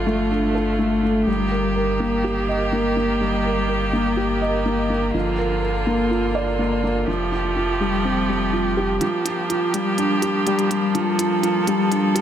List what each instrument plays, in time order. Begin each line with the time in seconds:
Already playing: sub bass G1, string quartet D3 A3 F4, felt piano F3 A3 D4 F4 A4
0.06 felt piano A3
0.31 felt piano D4
0.55 felt piano A4
0.79 felt piano A3
1.03 felt piano A3
1.27 sub bass G1, string quartet D#3 A#3 G4, felt piano G3
1.52 felt piano A#4
1.76 felt piano A#4
2.00 felt piano A#3
2.24 felt piano G4
2.48 felt piano D#5
2.73 felt piano A#3
2.97 felt piano A#3
3.21 felt piano G3
3.45 felt piano A#4
3.69 felt piano A#4
3.93 felt piano A#3
4.17 felt piano G4
4.42 felt piano D#5
4.66 felt piano A#3
4.90 felt piano A#3
5.14 sub bass G1, string quartet D3 F4, felt piano F3
5.38 felt piano A#4
5.63 felt piano A#4
5.87 felt piano A#3
6.11 felt piano F4
6.35 felt piano D5
6.59 felt piano A#3
6.84 felt piano A#3
7.07 sub bass F1, string quartet F3 A3 G4, felt piano F3
7.32 felt piano F4
7.56 felt piano F4
7.81 felt piano G3
8.05 felt piano C4
8.29 felt piano G3
8.53 felt piano F4
8.77 felt piano G4
9.01 felt piano F3, string quartet F3 A#3 G4, closed hi-hat
9.25 felt piano F4, closed hi-hat
9.49 felt piano F4, closed hi-hat
9.74 felt piano G3, closed hi-hat
9.98 felt piano D4, closed hi-hat
10.22 felt piano G4, closed hi-hat
10.46 felt piano G3, closed hi-hat
10.59 closed hi-hat
10.70 felt piano G3, closed hi-hat
10.95 felt piano F3, string quartet A4, closed hi-hat
11.19 felt piano F4, closed hi-hat
11.43 felt piano F4, closed hi-hat
11.67 felt piano G3, closed hi-hat
11.91 felt piano D4, closed hi-hat
12.15 felt piano G4, closed hi-hat